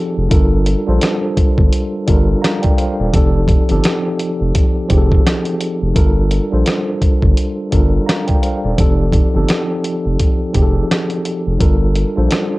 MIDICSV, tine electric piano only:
0, 0, Header, 1, 2, 480
1, 0, Start_track
1, 0, Key_signature, -2, "minor"
1, 0, Tempo, 705882
1, 212, Time_signature, 4, 2, 24, 8
1, 8561, End_track
2, 0, Start_track
2, 0, Title_t, "Tine electric piano"
2, 0, Program_c, 0, 4
2, 0, Control_c, 0, 64, 127
2, 0, Note_on_c, 0, 53, 92
2, 0, Note_on_c, 0, 60, 86
2, 0, Note_on_c, 0, 63, 73
2, 0, Note_on_c, 0, 67, 76
2, 0, Note_on_c, 0, 68, 71
2, 0, Note_on_c, 0, 69, 98
2, 134, Note_off_c, 0, 53, 0
2, 136, Note_off_c, 0, 60, 0
2, 139, Note_off_c, 0, 63, 0
2, 142, Note_off_c, 0, 67, 0
2, 166, Note_off_c, 0, 69, 0
2, 195, Note_on_c, 0, 55, 91
2, 200, Note_on_c, 0, 62, 83
2, 205, Note_on_c, 0, 65, 81
2, 210, Note_on_c, 0, 69, 83
2, 215, Note_on_c, 0, 70, 97
2, 220, Control_c, 0, 64, 0
2, 222, Note_off_c, 0, 68, 0
2, 345, Control_c, 0, 64, 127
2, 534, Note_off_c, 0, 55, 0
2, 537, Note_off_c, 0, 62, 0
2, 539, Note_off_c, 0, 65, 0
2, 542, Note_off_c, 0, 69, 0
2, 544, Note_off_c, 0, 70, 0
2, 586, Note_on_c, 0, 55, 82
2, 591, Note_on_c, 0, 62, 77
2, 596, Note_on_c, 0, 65, 78
2, 601, Note_on_c, 0, 69, 82
2, 606, Note_on_c, 0, 72, 88
2, 1323, Note_off_c, 0, 55, 0
2, 1325, Note_off_c, 0, 62, 0
2, 1328, Note_off_c, 0, 65, 0
2, 1331, Note_off_c, 0, 69, 0
2, 1333, Note_off_c, 0, 72, 0
2, 1403, Note_on_c, 0, 55, 93
2, 1407, Note_on_c, 0, 62, 77
2, 1413, Note_on_c, 0, 65, 79
2, 1418, Note_on_c, 0, 69, 78
2, 1422, Note_on_c, 0, 70, 94
2, 1643, Note_on_c, 0, 82, 68
2, 1647, Note_on_c, 0, 77, 64
2, 1655, Note_off_c, 0, 69, 0
2, 1657, Note_off_c, 0, 70, 0
2, 1784, Note_on_c, 0, 79, 79
2, 1785, Note_off_c, 0, 82, 0
2, 1787, Note_off_c, 0, 77, 0
2, 1788, Note_on_c, 0, 74, 66
2, 1880, Note_off_c, 0, 79, 0
2, 1883, Note_off_c, 0, 74, 0
2, 1885, Note_on_c, 0, 77, 71
2, 1889, Note_on_c, 0, 72, 65
2, 2026, Note_off_c, 0, 77, 0
2, 2028, Note_off_c, 0, 72, 0
2, 2040, Note_on_c, 0, 74, 67
2, 2044, Note_on_c, 0, 69, 58
2, 2056, Note_off_c, 0, 55, 0
2, 2058, Note_off_c, 0, 62, 0
2, 2061, Note_off_c, 0, 65, 0
2, 2125, Note_on_c, 0, 53, 87
2, 2129, Note_on_c, 0, 60, 78
2, 2134, Note_on_c, 0, 63, 79
2, 2136, Note_off_c, 0, 69, 0
2, 2139, Note_on_c, 0, 67, 80
2, 2142, Control_c, 0, 64, 0
2, 2145, Note_on_c, 0, 69, 100
2, 2267, Note_off_c, 0, 74, 0
2, 2272, Control_c, 0, 64, 127
2, 2459, Note_off_c, 0, 53, 0
2, 2461, Note_off_c, 0, 60, 0
2, 2464, Note_off_c, 0, 63, 0
2, 2466, Note_off_c, 0, 67, 0
2, 2469, Note_off_c, 0, 69, 0
2, 2507, Note_on_c, 0, 53, 82
2, 2512, Note_on_c, 0, 60, 83
2, 2517, Note_on_c, 0, 63, 73
2, 2522, Note_on_c, 0, 67, 78
2, 2527, Note_on_c, 0, 69, 93
2, 3243, Note_off_c, 0, 53, 0
2, 3246, Note_off_c, 0, 60, 0
2, 3248, Note_off_c, 0, 63, 0
2, 3251, Note_off_c, 0, 67, 0
2, 3253, Note_off_c, 0, 69, 0
2, 3320, Note_on_c, 0, 53, 86
2, 3325, Note_on_c, 0, 60, 84
2, 3329, Note_on_c, 0, 63, 72
2, 3335, Note_on_c, 0, 67, 82
2, 3339, Note_on_c, 0, 68, 72
2, 3384, Note_on_c, 0, 69, 94
2, 3389, Note_off_c, 0, 68, 0
2, 3974, Note_off_c, 0, 53, 0
2, 3977, Note_off_c, 0, 60, 0
2, 3979, Note_off_c, 0, 63, 0
2, 3982, Note_off_c, 0, 67, 0
2, 4006, Note_off_c, 0, 69, 0
2, 4035, Note_on_c, 0, 55, 90
2, 4040, Note_on_c, 0, 62, 79
2, 4045, Note_on_c, 0, 65, 76
2, 4050, Note_on_c, 0, 69, 81
2, 4055, Note_on_c, 0, 70, 99
2, 4060, Control_c, 0, 64, 0
2, 4201, Control_c, 0, 64, 127
2, 4374, Note_off_c, 0, 55, 0
2, 4376, Note_off_c, 0, 62, 0
2, 4379, Note_off_c, 0, 65, 0
2, 4381, Note_off_c, 0, 69, 0
2, 4384, Note_off_c, 0, 70, 0
2, 4425, Note_on_c, 0, 55, 78
2, 4430, Note_on_c, 0, 62, 72
2, 4435, Note_on_c, 0, 65, 74
2, 4440, Note_on_c, 0, 69, 76
2, 4445, Note_on_c, 0, 72, 85
2, 5162, Note_off_c, 0, 55, 0
2, 5165, Note_off_c, 0, 62, 0
2, 5167, Note_off_c, 0, 65, 0
2, 5170, Note_off_c, 0, 69, 0
2, 5172, Note_off_c, 0, 72, 0
2, 5243, Note_on_c, 0, 55, 85
2, 5248, Note_on_c, 0, 62, 78
2, 5253, Note_on_c, 0, 65, 74
2, 5258, Note_on_c, 0, 69, 74
2, 5263, Note_on_c, 0, 70, 87
2, 5483, Note_on_c, 0, 82, 67
2, 5487, Note_on_c, 0, 77, 59
2, 5495, Note_off_c, 0, 69, 0
2, 5498, Note_off_c, 0, 70, 0
2, 5624, Note_on_c, 0, 79, 73
2, 5625, Note_off_c, 0, 82, 0
2, 5628, Note_off_c, 0, 77, 0
2, 5629, Note_on_c, 0, 74, 61
2, 5721, Note_off_c, 0, 79, 0
2, 5723, Note_off_c, 0, 74, 0
2, 5725, Note_on_c, 0, 77, 68
2, 5730, Note_on_c, 0, 72, 64
2, 5867, Note_off_c, 0, 77, 0
2, 5869, Note_off_c, 0, 72, 0
2, 5880, Note_on_c, 0, 74, 65
2, 5884, Note_on_c, 0, 69, 56
2, 5896, Note_off_c, 0, 55, 0
2, 5898, Note_off_c, 0, 62, 0
2, 5901, Note_off_c, 0, 65, 0
2, 5965, Note_on_c, 0, 53, 88
2, 5970, Note_on_c, 0, 60, 80
2, 5975, Note_on_c, 0, 63, 80
2, 5977, Note_off_c, 0, 69, 0
2, 5979, Note_on_c, 0, 67, 75
2, 5981, Control_c, 0, 64, 0
2, 5985, Note_on_c, 0, 69, 98
2, 6094, Control_c, 0, 64, 127
2, 6107, Note_off_c, 0, 74, 0
2, 6299, Note_off_c, 0, 53, 0
2, 6301, Note_off_c, 0, 60, 0
2, 6304, Note_off_c, 0, 63, 0
2, 6306, Note_off_c, 0, 67, 0
2, 6309, Note_off_c, 0, 69, 0
2, 6347, Note_on_c, 0, 53, 80
2, 6352, Note_on_c, 0, 60, 82
2, 6357, Note_on_c, 0, 63, 74
2, 6362, Note_on_c, 0, 67, 77
2, 6367, Note_on_c, 0, 69, 90
2, 7083, Note_off_c, 0, 53, 0
2, 7086, Note_off_c, 0, 60, 0
2, 7088, Note_off_c, 0, 63, 0
2, 7091, Note_off_c, 0, 67, 0
2, 7093, Note_off_c, 0, 69, 0
2, 7160, Note_on_c, 0, 53, 86
2, 7165, Note_on_c, 0, 60, 82
2, 7170, Note_on_c, 0, 63, 71
2, 7175, Note_on_c, 0, 67, 75
2, 7180, Note_on_c, 0, 68, 72
2, 7224, Note_on_c, 0, 69, 92
2, 7230, Note_off_c, 0, 68, 0
2, 7815, Note_off_c, 0, 53, 0
2, 7817, Note_off_c, 0, 60, 0
2, 7819, Note_off_c, 0, 63, 0
2, 7822, Note_off_c, 0, 67, 0
2, 7847, Note_off_c, 0, 69, 0
2, 7875, Note_on_c, 0, 55, 88
2, 7880, Note_on_c, 0, 62, 80
2, 7885, Note_on_c, 0, 65, 77
2, 7890, Note_on_c, 0, 69, 79
2, 7895, Note_on_c, 0, 70, 100
2, 7900, Control_c, 0, 64, 0
2, 8018, Control_c, 0, 64, 127
2, 8214, Note_off_c, 0, 55, 0
2, 8216, Note_off_c, 0, 62, 0
2, 8219, Note_off_c, 0, 65, 0
2, 8222, Note_off_c, 0, 69, 0
2, 8224, Note_off_c, 0, 70, 0
2, 8266, Note_on_c, 0, 55, 81
2, 8271, Note_on_c, 0, 62, 73
2, 8276, Note_on_c, 0, 65, 76
2, 8281, Note_on_c, 0, 69, 78
2, 8286, Note_on_c, 0, 72, 82
2, 8561, Note_off_c, 0, 55, 0
2, 8561, Note_off_c, 0, 62, 0
2, 8561, Note_off_c, 0, 65, 0
2, 8561, Note_off_c, 0, 69, 0
2, 8561, Note_off_c, 0, 72, 0
2, 8561, End_track
0, 0, End_of_file